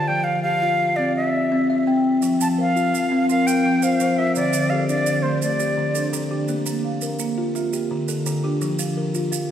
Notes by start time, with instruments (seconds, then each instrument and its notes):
Already playing: kalimba A4
0.08 kalimba F3, flute G5
0.24 flute F5
0.43 kalimba G4, flute F5
0.62 kalimba F4
0.96 kalimba C4, flute D5
1.16 flute E5
1.52 kalimba C4
1.70 kalimba E5
1.87 kalimba C4 G5
2.22 kalimba F3, maracas
2.40 marimba F3, flute A5, maracas
2.58 kalimba A#4, marimba C5, flute F5
2.76 kalimba F4, maracas
2.93 marimba F3, maracas
3.12 kalimba C4
3.29 marimba C4 A#4, flute F5, maracas
3.47 kalimba A#4, flute G5, maracas
3.65 kalimba F3
3.82 marimba F4, kalimba C5, flute F5, maracas
4.00 kalimba F3 C5, maracas
4.18 marimba F4, kalimba A#4, flute E5
4.35 kalimba D3, flute D5, maracas
4.53 marimba D3, maracas
4.70 kalimba G4, marimba A4, flute F5
4.88 kalimba D4, flute D5, maracas
5.06 marimba D3, maracas
5.23 kalimba A3, flute C5
5.42 marimba A3 G4, flute D5, maracas
5.60 kalimba G4, maracas
5.77 kalimba D3
5.95 marimba D4, kalimba A4, maracas
6.13 kalimba D3 A4, maracas
6.31 marimba D4, kalimba G4
6.48 kalimba A#3, maracas
6.66 marimba A#3, maracas
6.84 marimba F5
7.01 kalimba A#4, maracas
7.19 marimba A#3, maracas
7.38 kalimba F4
7.55 marimba F4 E5, maracas
7.73 kalimba G4, maracas
7.91 kalimba D3
8.08 marimba D3, kalimba A4, maracas
8.26 kalimba D3 A4, maracas
8.44 marimba D4, kalimba G4
8.61 kalimba F3, maracas
8.79 marimba F3, maracas
8.97 kalimba A#4
9.15 kalimba F4, maracas
9.32 marimba F3, maracas